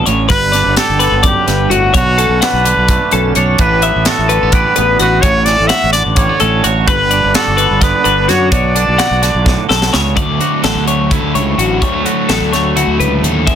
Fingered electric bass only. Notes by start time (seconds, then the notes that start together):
0.07 A1
0.30 G1
0.66 G1
0.89 G1
1.12 G1
1.48 G1
1.70 G1
1.95 B1
2.29 B1
2.53 B1
2.77 B1
3.13 B1
3.36 B1
3.59 A1
3.96 A1
4.19 A1
4.43 A1
4.78 A1
5.00 A1
5.23 A1
5.60 A1
5.83 A1
6.06 A1
6.41 A1
6.65 A1
6.88 G1
7.24 G1
7.48 G1
7.71 G1
8.06 G1
8.29 F#2
8.52 B1
8.88 B1
9.11 B1
9.34 B1
9.70 B1
9.94 C#2
10.17 D2
10.64 A1
10.76 D2
11.23 D2
11.35 C#2
11.58 A1
11.83 D2
12.29 A1
12.41 D2
12.87 D2
13.00 C#2
13.22 D#2
13.47 E2